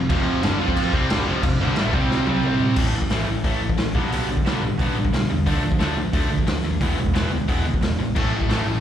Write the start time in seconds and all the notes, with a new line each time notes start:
0.09 F1 F2 C3 F3, kick, crash
0.43 G1 G2 D3 G3, snare, crash
0.60 F2 F3 C4 F4
0.68 kick
0.76 kick, crash
0.93 C2 C3 G3 C4, kick
1.10 G1 G2 D3 G3, snare, crash
1.27 F1 F2 C3 F3
1.43 F1 F2 C3, kick, crash
1.61 G1 G2 D3 G3
1.76 A1 A2 E3 A3, snare, crash
1.93 C2 C3 G3 C4, kick
2.11 snare
2.27 C2 C3 G3 C4, high tom
2.43 mid tom
2.60 floor tom
2.76 A1 A2 E3 A3, kick, crash
2.94 A1 A2 E3
3.02 kick
3.10 A1 A2 E3 A3, snare, open hi-hat
3.27 A1 A2 E3
3.44 A1 A2 E3 A3, kick, open hi-hat
3.61 A1 A2 E3
3.69 kick
3.77 A#1 A2 E3, snare, open hi-hat
3.95 B1 G2 B2 D3 G3 B3, kick
4.12 B1 G2 B2 D3 G3 B3, open hi-hat
4.29 B1 G2 B2 D3 G3
4.37 kick
4.45 B1 G2 B2 D3 G3 B3, snare, open hi-hat
4.62 A1 G2 B2 D3 G3
4.78 B1 G2 B2 D3 G3 B3, kick, open hi-hat
4.96 A1 G2 B2 D3 G3
5.05 kick
5.13 B1 G2 B2 D3 G3, snare, open hi-hat
5.29 E2 G2 B2 D3 G3
5.46 D2 D3 F3 A3 D4, kick, open hi-hat
5.63 D2 D3 F3 A3
5.72 kick
5.79 D2 D3 F3 A3 D4, snare, open hi-hat
5.97 D2 D3 F3 A3
6.13 D2 D3 F3 A3 D4, kick, open hi-hat
6.30 D2 D3 F3 A3
6.39 kick
6.47 D2 D3 F3 A3, snare, open hi-hat
6.64 D#2 D3 F3 A3
6.81 E1 E2 B2 E3 G#3 B3, kick, open hi-hat
6.97 E1 E2 B2 E3 G#3
7.06 kick
7.14 E1 E2 B2 E3 G#3 B3, snare, open hi-hat
7.31 D2 E2 B2 E3 G#3
7.48 E1 E2 B2 E3 G#3 B3, kick, open hi-hat
7.65 D2 E2 B2 E3 G#3
7.74 kick
7.81 E1 E2 B2 E3 G#3, snare, open hi-hat
7.97 A1 E2 B2 E3 G#3
8.15 A1 A2 E3 A3, kick, crash
8.31 A1 A2 E3 A3
8.41 kick
8.48 A1 A2 E3 A3, snare, open hi-hat
8.66 A1 A2 E3 A3